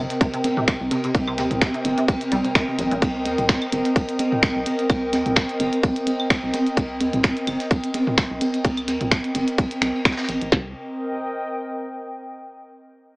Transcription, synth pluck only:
0.21 0.27 C3 loud
0.34 0.37 C3 loud
0.57 0.62 C3 loud
0.68 0.71 C3 loud
0.91 0.97 C3 loud
1.04 1.07 C3 loud
1.27 1.32 C3 loud
1.38 1.42 C3 loud
1.62 1.68 C3 loud
1.74 1.77 C3 loud
1.98 2.03 C3 loud
2.08 2.12 C3 loud
2.32 2.38 G3 loud
2.45 2.48 C3 medium
2.55 2.59 D#3 loud
2.68 2.76 C3 medium
2.79 2.82 G2 medium
2.91 2.94 A#2 loud
10.52 10.74 C3 medium

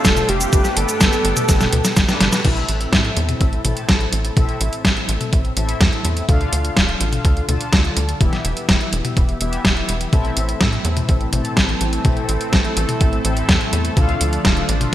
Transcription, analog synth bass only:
0.05 0.23 F1 medium
0.29 0.47 F1 medium
0.53 0.62 G1 medium
0.77 0.86 G1 loud
1.01 1.10 G1 medium
1.25 1.34 G1 loud
1.49 1.67 G1 medium
1.73 1.82 D2 medium
1.97 2.06 G1 loud
2.21 2.30 G1 medium
2.45 2.63 A1 loud
2.69 2.87 A1 medium
2.93 3.11 A2 medium
3.17 3.35 E2 loud
3.41 3.59 A1 loud
3.65 3.74 A1 medium
3.89 4.07 A1 medium
4.13 4.31 A1 medium
4.37 4.46 A1 medium
4.61 4.70 A1 medium
4.85 4.94 A1 medium
5.09 5.18 A1 loud
5.33 5.51 A1 medium
5.57 5.75 A1 medium
5.81 5.90 E2 loud
6.05 6.23 E2 medium
6.29 6.47 D2 loud
6.53 6.71 D2 medium
6.77 6.95 D1 loud
7.01 7.19 A1 loud
7.25 7.43 D2 loud
7.49 7.58 D2 medium
7.73 7.91 D2 medium
7.97 8.15 D2 medium
8.21 8.30 E1 medium
8.45 8.54 E1 loud
8.69 8.78 E1 medium
8.93 9.02 E1 loud
9.17 9.35 E1 loud
9.41 9.59 E1 medium
9.65 9.83 E1 loud
9.89 10.07 E1 medium
10.13 10.31 A1 loud
10.37 10.55 A1 medium
10.61 10.79 A2 loud
10.85 11.03 E2 loud
11.09 11.27 A1 loud
11.33 11.42 A1 medium
11.57 11.75 A1 medium
11.81 11.99 A1 medium
12.05 12.14 A1 medium
12.29 12.38 A1 loud
12.53 12.62 A1 medium
12.77 12.86 A1 loud
13.01 13.19 A1 medium
13.25 13.43 A1 medium
13.49 13.58 E2 loud
13.73 13.91 E2 medium
13.97 14.15 D2 loud
14.21 14.39 D2 medium
14.45 14.63 D1 loud
14.69 14.87 A1 loud

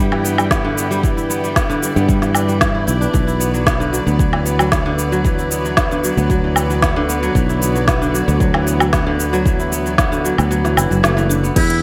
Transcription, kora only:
0.00 0.63 D3 medium
0.00 0.37 G3 medium
0.00 0.24 B3 medium
0.00 0.63 E4 medium
0.12 0.69 E3 medium
0.24 0.50 B3 medium
0.38 0.69 G3 medium
0.51 0.77 B3 loud
0.65 1.68 D3 medium
0.77 1.29 B3 medium
0.91 1.42 G3 loud
1.03 1.74 E3 medium
1.17 2.74 E4 medium
1.30 1.56 B3 medium
1.44 1.74 G3 medium
1.56 1.96 B3 medium
1.70 3.19 D3 medium
1.82 2.07 G3 medium
1.96 3.40 B3 medium
2.08 2.47 G3 medium
2.22 2.60 E3 medium
2.35 3.00 D4 medium
2.48 3.19 G3 medium
2.61 3.12 E3 medium
2.75 2.87 E4 medium
2.87 3.27 E4 medium
3.01 4.69 D4 medium
3.13 3.85 E3 medium
3.27 4.84 E4 medium
3.40 3.66 B3 medium
3.54 3.85 F#3 medium
3.66 4.06 B3 medium
3.80 4.85 D3 medium
3.93 4.18 F#3 medium
4.07 4.45 B3 medium
4.19 4.58 F#3 medium
4.33 4.90 E3 medium
4.46 4.72 B3 medium
4.59 4.90 F#3 medium
4.72 4.98 B3 loud
4.86 5.90 D3 loud
4.98 5.51 B3 medium
5.12 5.64 F#3 medium
5.25 5.95 E3 medium
5.39 6.95 E4 medium
5.51 5.77 B3 medium
5.65 5.95 F#3 medium
5.78 6.17 B3 medium
5.91 6.95 D3 medium
6.04 6.29 F#3 medium
6.18 6.56 B3 medium
6.30 6.69 F#3 medium
6.44 7.01 E3 medium
6.57 6.82 B3 medium
6.70 7.01 F#3 medium
6.83 7.09 B3 loud
6.96 8.00 D3 loud
7.09 7.61 B3 medium
7.23 7.74 F#3 medium
7.35 8.06 E3 medium
7.49 9.06 E4 medium
7.62 7.88 B3 medium
7.75 8.06 F#3 medium
7.88 8.27 B3 medium
8.02 9.05 D3 medium
8.14 8.39 F#3 medium
8.28 8.66 B3 medium
8.40 8.79 F#3 medium
8.54 9.11 E3 medium
8.67 8.93 B3 medium
8.80 9.11 F#3 medium
8.93 9.19 B3 loud
9.07 10.11 D3 loud
9.19 9.72 B3 medium
9.33 9.84 F#3 loud
9.46 10.17 E3 medium
9.60 10.77 E4 medium
9.72 9.98 B3 medium
9.86 10.17 F#3 medium
9.98 10.38 B3 loud
10.12 11.28 D3 medium
10.24 10.49 F#3 medium
10.38 11.43 B3 medium
10.51 10.89 F#3 medium
10.64 11.15 E3 medium
10.77 11.69 E4 medium
10.91 11.35 F#3 medium
11.03 11.83 A3 medium
11.17 11.35 E3 medium
11.29 11.61 D3 medium
11.43 11.82 B3 medium
11.56 11.83 E3 medium
11.70 11.83 E4 medium

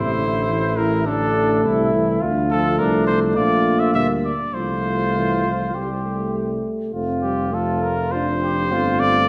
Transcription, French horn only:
0.00 1.04 A3 medium
1.06 2.20 A3 medium
2.23 3.96 A3 medium
3.94 4.33 A#3 medium
4.55 5.71 A3 medium
5.75 6.62 G3 medium
6.94 7.54 C4 medium
7.52 8.12 A3 medium
8.13 8.74 D4 medium
8.72 9.29 C4 medium

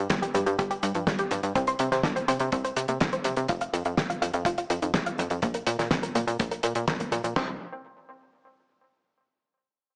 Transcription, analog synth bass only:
0.10 0.31 G1 medium
0.34 0.45 G2 medium
0.47 0.57 G2 loud
0.59 0.79 G1 medium
0.83 0.93 G2 medium
0.95 1.05 G2 medium
1.07 1.17 G1 loud
1.31 1.41 G2 loud
1.43 1.53 G2 medium
1.56 1.76 C2 loud
1.80 1.90 C3 medium
1.92 2.02 C3 medium
2.04 2.24 C2 medium
2.28 2.38 C3 medium
2.40 2.50 C3 loud
2.52 2.73 C2 medium
2.76 2.87 C3 medium
2.89 2.99 C3 medium
3.02 3.11 C2 medium
3.25 3.35 C3 loud
3.37 3.47 C3 medium
3.49 3.69 F1 loud
3.73 3.83 F2 medium
3.85 3.95 F2 medium
3.98 4.18 F1 medium
4.22 4.32 F2 medium
4.34 4.44 F2 loud
4.45 4.66 F1 medium
4.70 4.80 F2 medium
4.82 4.92 F2 medium
4.94 5.04 F1 loud
5.19 5.29 F2 loud
5.31 5.41 F2 loud
5.43 5.63 A#1 loud
5.67 5.77 A#2 medium
5.79 5.89 A#2 medium
5.91 6.11 A#1 medium
6.15 6.25 A#2 medium
6.27 6.37 A#2 loud
6.40 6.60 A#1 medium
6.63 6.74 A#2 loud
6.75 6.86 A#2 loud
6.88 6.98 A#1 loud
7.12 7.22 A#2 loud
7.24 7.34 A#2 medium
7.36 7.59 C2 loud

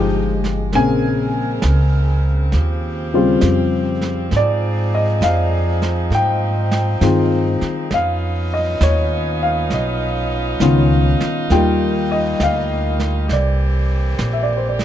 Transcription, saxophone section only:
0.00 0.56 F3 medium
0.00 2.49 G#3 medium
0.00 0.56 D#4 medium
0.00 0.56 G4 medium
0.73 4.28 C#3 medium
0.73 7.87 C4 medium
0.73 2.50 A#4 medium
2.54 7.88 F3 medium
2.54 4.31 G4 medium
4.32 7.88 D#4 medium
4.32 6.09 G#4 medium
6.14 7.90 G5 medium
7.90 11.34 B3 medium
7.90 11.34 C#4 medium
7.90 13.26 D#4 medium
7.90 13.26 F4 medium
11.51 13.29 G3 medium
11.51 13.27 A#3 medium
13.28 14.85 E3 medium
13.28 14.85 A#3 medium
13.28 14.85 C4 medium
13.28 14.85 G4 medium

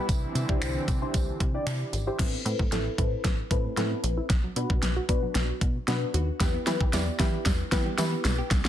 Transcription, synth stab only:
0.49 0.88 D4 loud
0.49 0.88 E4 medium
0.49 0.88 G4 medium
0.49 0.88 C5 loud
1.02 1.40 D4 medium
1.02 1.41 E4 medium
1.02 1.41 G4 medium
1.02 1.41 C5 loud
1.54 1.93 D4 medium
1.54 1.93 E4 medium
1.54 1.93 G4 medium
1.54 1.93 D5 loud
2.07 2.19 D4 medium
2.07 2.18 E4 medium
2.07 2.19 G4 medium
2.07 2.19 C5 loud
2.19 2.39 C4 medium
2.19 2.39 E4 medium
2.45 2.66 C4 medium
2.45 2.66 E4 medium
2.45 2.66 A4 medium
2.45 2.66 B4 loud
2.72 2.92 C4 medium
2.72 2.92 E4 medium
2.72 2.92 A4 medium
2.72 2.92 B4 loud
2.98 3.39 C4 loud
2.98 3.39 E4 medium
2.98 3.39 A4 medium
2.98 3.39 B4 loud
3.51 3.71 C4 loud
3.51 3.71 E4 medium
3.51 3.71 A4 medium
3.51 3.71 B4 loud
3.77 4.30 C4 medium
3.77 4.30 E4 medium
3.77 4.30 A4 medium
3.77 4.30 B4 loud
4.56 4.96 B3 medium
4.56 4.97 D4 medium
4.56 4.97 F#4 medium
4.56 4.97 B4 loud
5.09 5.68 B3 medium
5.09 5.69 D4 medium
5.09 5.69 F#4 medium
5.09 5.69 B4 loud
5.88 6.28 B3 loud
5.88 6.28 D4 medium
5.88 6.28 F#4 medium
5.88 6.28 B4 loud
6.40 6.61 B3 medium
6.40 6.61 E4 medium
6.40 6.61 G4 medium
6.40 6.61 B4 medium
6.67 6.87 B3 loud
6.67 6.87 E4 medium
6.67 6.87 G4 medium
6.67 6.87 B4 loud
6.93 7.13 B3 loud
6.93 7.13 E4 medium
6.93 7.13 G4 medium
6.93 7.13 D5 loud
7.19 7.60 B3 loud
7.19 7.60 E4 loud
7.19 7.60 G4 medium
7.19 7.60 B4 loud
7.72 7.92 B3 loud
7.72 7.92 E4 medium
7.72 7.92 G4 medium
7.72 7.92 B4 loud
7.98 8.51 B3 medium
7.98 8.51 E4 medium
7.98 8.51 G4 medium
7.98 8.51 B4 loud

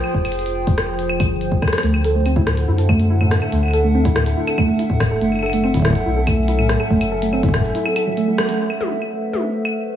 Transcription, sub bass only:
0.14 1.21 F1 loud
1.20 1.29 C2 medium
1.31 1.60 G1 medium
1.83 2.65 D2 loud
2.68 3.39 F#2 medium
3.52 4.34 D2 loud
5.00 5.18 D1 medium
5.21 6.03 F#1 loud
6.06 6.77 B1 loud
6.90 7.72 F#1 loud

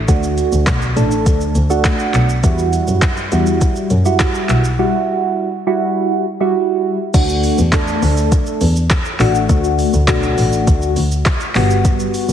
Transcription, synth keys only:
0.08 0.77 A3 medium
0.08 0.77 D4 medium
0.08 0.77 F#4 medium
0.96 1.54 A3 medium
0.96 1.54 D4 medium
0.96 1.54 A4 loud
1.70 2.27 A3 medium
1.70 2.28 D4 medium
1.70 2.28 F#4 loud
2.43 3.12 G3 medium
2.43 3.13 E4 medium
2.43 3.13 F#4 medium
3.32 3.89 G3 medium
3.32 3.89 E4 medium
3.32 3.89 F#4 loud
4.05 4.63 G3 medium
4.05 4.63 E4 medium
4.05 4.63 F#4 loud
4.79 5.48 G3 medium
4.79 5.48 E4 medium
4.79 5.48 F#4 loud
5.67 6.24 G3 medium
5.67 6.25 E4 medium
5.67 6.25 F#4 loud
6.40 6.98 G3 medium
6.40 6.98 E4 medium
6.40 6.98 F#4 loud
7.14 7.60 A3 medium
7.14 7.60 D4 medium
7.14 7.60 F#4 loud
7.72 8.65 A3 loud
7.72 8.65 D4 medium
7.72 8.65 A4 loud
9.20 9.43 A3 loud
9.20 9.43 D4 medium
9.20 9.43 F#4 loud
9.49 9.95 A3 medium
9.49 9.95 D4 medium
9.49 9.96 F#4 loud
10.08 11.00 A3 medium
10.08 11.00 D4 medium
10.08 11.00 F#4 loud
11.55 12.26 G3 medium
11.55 12.26 B3 medium
11.55 12.26 F#4 loud

